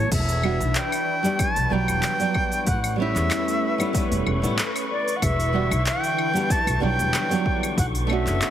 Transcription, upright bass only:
0.12 0.56 E1 medium
0.60 0.73 B1 medium
1.56 1.68 B1 medium
1.71 1.85 B1 medium
1.88 2.00 E1 medium
2.67 3.11 A1 loud
3.16 3.28 E2 loud
4.11 4.24 E1 medium
4.26 4.40 E1 medium
4.43 4.56 A1 medium
5.22 5.66 E1 loud
5.71 5.83 B1 loud
6.67 6.79 B1 medium
6.82 6.96 B1 loud
6.99 7.11 E1 medium
7.78 8.22 B1 loud
8.26 8.39 F#1 loud

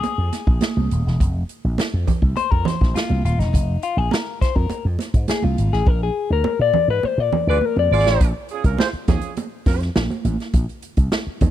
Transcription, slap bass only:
0.03 muted slap bass stroke soft
0.18 0.29 F2 medium
0.47 0.58 A#1 loud
0.77 0.88 C2 medium
0.92 1.02 D#1 medium
1.07 1.17 E1 medium
1.20 1.42 F1 loud
1.65 1.75 A#1 medium
1.94 2.04 F2 medium
2.22 2.33 C2 medium
2.37 muted slap bass stroke soft
2.52 2.63 F2 medium
2.81 2.92 A#1 medium
3.10 3.21 C2 medium
3.25 3.36 D#1 loud
3.39 3.50 E1 medium
3.54 3.76 F1 medium
3.97 4.08 A#1 medium
4.42 muted slap bass stroke medium
4.56 4.67 F2 medium
4.70 muted slap bass stroke soft
4.85 4.96 F2 loud
5.14 5.25 G#2 medium
5.44 5.55 C2 medium
5.58 5.69 G#1 loud
5.73 5.84 A1 loud
5.86 6.09 A#1 medium
6.30 6.42 D2 medium
6.59 6.71 A#2 loud
6.88 7.00 G#2 medium
7.04 muted slap bass stroke soft
7.18 7.29 A#2 medium
7.47 7.58 D2 medium
7.76 7.88 F2 medium
7.91 8.05 G#1 loud
8.05 8.17 A1 loud
8.21 8.31 A#1 loud
8.64 8.75 C2 medium
8.93 muted slap bass stroke soft
9.08 9.19 D#2 medium
9.66 9.88 F2 medium
9.96 10.06 A#1 loud
10.25 10.35 A1 medium
10.54 10.65 A#1 loud
10.97 11.08 C2 medium
11.27 muted slap bass stroke soft
11.42 11.51 D#2 loud

